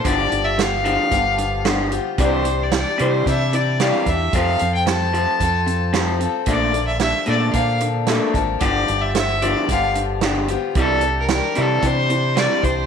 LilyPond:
<<
  \new Staff \with { instrumentName = "Fiddle" } { \time 4/4 \key c \mixolydian \tempo 4 = 112 d''8. e''16 f''2~ f''8 r8 | c''8. d''16 d''8 c''8 e''8 d''8 f''8 e''8 | f''8. g''16 a''2~ a''8 r8 | d''8. e''16 e''8 d''8 f''8 r4. |
d''8. e''16 e''8 d''8 f''8 r4. | a'8. bes'16 bes'8 a'8 c''4 d''8 c''8 | }
  \new Staff \with { instrumentName = "Steel-string acoustic guitar" } { \time 4/4 \key c \mixolydian <g, d f b f' g'>4 <f b f' g'>8 <f b f' g'>8 <g, d f b f' g'>4 <f b f' g'>8 <f b f' g'>8 | <c g d' e' g'>4 <g d' e' g'>8 <d' e' g'>8 <c g d' e' g'>4 <g d' e' g'>8 <d' e' g'>8 | <f c' f' a'>4 <f c' f' a'>8 <c' f' a'>8 <f c' f' a'>4 <f c' f' a'>8 <c' f' a'>8 | <bes, d f bes d' a'>4 <f bes d' a'>8 <f bes d' a'>8 <bes, d f bes d' a'>4 <f bes d' a'>8 <f bes d' a'>8 |
<g, d f b f' g'>4 <f b f' g'>8 <f b f' g'>8 <g, d f b f' g'>4 <f b f' g'>8 <f b f' g'>8 | <c g d' e' g'>4 <g d' e' g'>8 <d' e' g'>8 <c g d' e' g'>4 <g d' e' g'>8 <d' e' g'>8 | }
  \new Staff \with { instrumentName = "Clean electric guitar" } { \clef bass \time 4/4 \key c \mixolydian <g, d f>8 <g, d>8 <g, d>8 <g, d f>8 g,8 <g, d>8 <g, d f>8 <g, d>8 | <c e g>8 <c e>8 <c e>8 <c e g>8 <c e>8 <c e>8 <c e g>8 <c e>8 | <f, c f>8 <f, c>8 <f, c>8 <f, c f>8 <f, c>8 <f, c>8 <f, c f>8 <f, c>8 | <bes, d a>8 <bes, d>8 <bes, d>8 <bes, d a>8 <bes, d>8 <bes, d>8 <bes, d a>8 <bes, d>8 |
<g, d f>8 <g, d>8 <g, d>8 <g, d f>8 <g, d>8 <g, d>8 <g, d f>8 <g, d>8 | <c e g>8 <c e>8 <c e>8 <c e g>8 <c e>8 <c e>8 <c e g>8 <c e>8 | }
  \new Staff \with { instrumentName = "Fingered electric bass" } { \clef bass \time 4/4 \key c \mixolydian g,,8 g,,4. g,,2 | c,4. c8 c4. e,8 | f,8 f,4. f,2 | bes,,4. bes,8 bes,4. aes,,8 |
g,,8 g,,4. g,,2 | c,4. c8 c4. c,8 | }
  \new DrumStaff \with { instrumentName = "Drums" } \drummode { \time 4/4 <hh bd>8 hh8 <hh sn>8 hh8 <hh bd>8 hh8 <hh sn>8 hh8 | <hh bd>8 hh8 <hh sn>8 hh8 <hh bd>8 hh8 <hh sn>8 <hh bd>8 | <hh bd>8 hh8 <hh sn>8 hh8 <hh bd>8 hh8 <hh sn>8 hh8 | <hh bd>8 hh8 <hh sn>8 hh8 <hh bd>8 hh8 <hh sn>8 <hh bd>8 |
<hh bd>8 hh8 <hh sn>8 hh8 <hh bd>8 hh8 <hh sn>8 hh8 | <hh bd>8 hh8 <hh sn>8 hh8 <hh bd>8 hh8 <hh sn>8 <hh bd>8 | }
>>